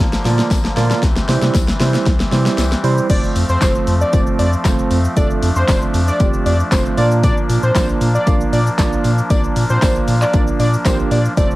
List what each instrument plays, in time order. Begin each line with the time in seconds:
Already playing: pipe organ D3 F3 A#3
0.00 analog synth bass A#1, kick, tambourine
0.13 snare, shaker
0.25 analog synth bass A#2, tine electric piano A#3 F4 D5, snare, open hi-hat, tambourine, shaker
0.39 snare, shaker
0.51 analog synth bass A#1, kick, snare, closed hi-hat, tambourine, shaker
0.65 snare, shaker
0.77 analog synth bass A#2, tine electric piano A#3 F4 D5, snare, open hi-hat, tambourine, shaker
0.91 snare, shaker
1.02 analog synth bass C2, pipe organ E3 G3 C4, kick, snare, closed hi-hat, tambourine, shaker
1.16 snare, shaker
1.28 analog synth bass C3, tine electric piano G3 E4 C5, snare, open hi-hat, tambourine, shaker
1.42 analog synth bass C3, snare, shaker
1.54 analog synth bass C2, kick, snare, closed hi-hat, tambourine, shaker
1.68 snare, shaker
1.80 analog synth bass C3, tine electric piano G3 E4 C5, snare, open hi-hat, tambourine, shaker
1.94 snare, shaker
2.06 analog synth bass C2, kick, snare, closed hi-hat, tambourine, shaker
2.20 snare, shaker
2.32 analog synth bass C3, tine electric piano G3 E4 C5, snare, open hi-hat, tambourine, shaker
2.46 snare, shaker
2.58 analog synth bass C2, snare, closed hi-hat, tambourine, shaker
2.72 snare, shaker
2.83 analog synth bass C3, tine electric piano G3 E4 C5, open hi-hat, tambourine, shaker
2.98 shaker
3.09 analog synth bass F1, pipe organ F3 A3 C4, tine electric piano A3 C4 F4 C5, analog synth lead D5, kick, closed hi-hat, crash, tambourine, shaker
3.23 shaker
3.36 analog synth bass F2, open hi-hat, tambourine, shaker
3.49 analog synth bass F2, analog synth lead C5, shaker
3.61 analog synth bass F1, tine electric piano A3 C4 F4 C5, analog synth lead C5, kick, snare, clap, closed hi-hat, tambourine, shaker
3.75 shaker
3.87 analog synth bass F2, open hi-hat, shaker
4.01 analog synth lead D5, shaker
4.13 analog synth bass F1, tine electric piano A3 C4 F4 C5, kick, closed hi-hat, tambourine, shaker
4.27 shaker
4.39 analog synth bass F2, analog synth lead D5, open hi-hat, tambourine, shaker
4.53 shaker
4.65 analog synth bass F1, tine electric piano A3 C4 F4 C5, kick, snare, clap, closed hi-hat, tambourine, shaker
4.79 shaker
4.91 analog synth bass F2, open hi-hat, tambourine, shaker
5.05 shaker
5.16 analog synth bass F1, tine electric piano A3 C4 F4 A4, pipe organ D4, analog synth lead D5, kick, closed hi-hat, tambourine, shaker
5.30 shaker
5.43 analog synth bass F2, open hi-hat, tambourine, shaker
5.56 analog synth bass F2, analog synth lead C5, shaker
5.68 analog synth bass F1, tine electric piano A3 C4 F4 D5, analog synth lead C5, kick, snare, clap, closed hi-hat, tambourine, shaker
5.82 shaker
5.94 analog synth bass F2, open hi-hat, tambourine, shaker
6.08 analog synth lead D5, shaker
6.20 analog synth bass F1, tine electric piano A3 C4 F4 G4, kick, closed hi-hat, tambourine, shaker
6.34 shaker
6.46 analog synth bass F2, analog synth lead D5, open hi-hat, tambourine, shaker
6.60 shaker
6.72 analog synth bass F1, tine electric piano A3 C4 F4 C5, analog synth lead C5, kick, snare, clap, closed hi-hat, tambourine, shaker
6.86 shaker
6.97 analog synth bass A#2, tine electric piano A#3 D4 F4 D5, pipe organ A#3, analog synth lead D5, open hi-hat, tambourine, shaker
7.11 shaker
7.23 analog synth lead D5, kick, closed hi-hat, tambourine, shaker
7.37 shaker
7.49 analog synth bass A#2, open hi-hat, tambourine, shaker
7.63 analog synth bass A#2, analog synth lead C5, shaker
7.75 analog synth bass A#1, tine electric piano A#3 D4 F4 D5, analog synth lead C5, kick, snare, clap, closed hi-hat, tambourine, shaker
7.89 shaker
8.01 analog synth bass A#2, open hi-hat, shaker
8.15 analog synth lead D5, shaker
8.27 analog synth bass A#1, tine electric piano A#3 D4 F4 F5, kick, closed hi-hat, tambourine, shaker
8.41 shaker
8.53 analog synth bass A#2, analog synth lead D5, open hi-hat, tambourine, shaker
8.67 shaker
8.78 analog synth bass A#1, tine electric piano A#3 D4 F4 D5, kick, snare, clap, closed hi-hat, tambourine, shaker
8.93 shaker
9.04 analog synth bass A#2, open hi-hat, tambourine, shaker
9.18 shaker
9.30 analog synth bass A#1, tine electric piano A#3 D4 F4 D5, analog synth lead D5, kick, closed hi-hat, tambourine, shaker
9.44 shaker
9.56 analog synth bass A#2, open hi-hat, tambourine, shaker
9.70 analog synth bass A#2, analog synth lead C5, shaker
9.82 analog synth bass A#1, tine electric piano A#3 D4 F4 D5, analog synth lead C5, kick, snare, clap, closed hi-hat, tambourine, shaker
9.96 shaker
10.08 analog synth bass A#2, open hi-hat, tambourine, shaker
10.22 analog synth lead D5, clap, shaker
10.33 analog synth bass A#1, tine electric piano A#3 D4 F4 D5, kick, closed hi-hat, tambourine, shaker
10.47 shaker
10.60 analog synth bass A#2, analog synth lead D5, open hi-hat, tambourine, shaker
10.74 shaker
10.85 analog synth bass A#1, tine electric piano A#3 D4 F4 G4, analog synth lead C5, kick, snare, clap, closed hi-hat, tambourine, shaker
10.99 shaker
11.11 analog synth bass A#2, analog synth lead D5, open hi-hat, tambourine, shaker
11.25 shaker
11.37 analog synth bass F1, tine electric piano A3 C4 F4 C5, pipe organ A3 C4, analog synth lead D5, kick, closed hi-hat, tambourine, shaker
11.51 shaker